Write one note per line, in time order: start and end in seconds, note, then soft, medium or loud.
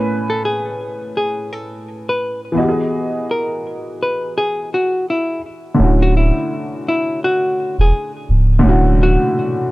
0.00 2.51 A2 medium
0.00 2.52 A3 medium
0.00 2.53 C#4 medium
0.00 2.59 B4 medium
0.00 2.54 G#5 medium
0.30 0.42 A4 medium
0.45 1.11 G#4 medium
1.17 1.53 G#4 medium
1.53 2.04 A4 medium
2.09 2.40 B4 medium
2.52 5.36 E3 medium
2.52 5.38 B3 medium
2.57 5.40 F#4 medium
2.57 5.39 D#5 medium
2.62 2.67 G4 medium
2.69 5.44 G#4 medium
3.31 3.97 A#4 medium
4.03 4.33 B4 medium
4.38 4.69 G#4 medium
4.74 5.05 F#4 medium
5.10 5.41 E4 medium
5.75 8.58 D3 medium
5.75 8.59 A3 medium
5.79 6.31 D1 loud
5.79 8.61 C#4 medium
5.79 8.62 E4 medium
5.84 8.63 F#4 medium
6.02 6.14 F#4 medium
6.17 6.83 E4 medium
6.89 7.19 E4 medium
7.24 7.76 F#4 medium
7.78 7.92 E1 medium
7.78 8.12 G#4 medium
8.29 8.62 C#1 medium
8.59 9.72 D3 medium
8.59 9.72 A3 medium
8.64 9.17 D1 loud
8.64 9.72 C#4 medium
8.64 9.72 E4 medium
8.69 9.72 F#4 medium
9.03 9.69 F#4 medium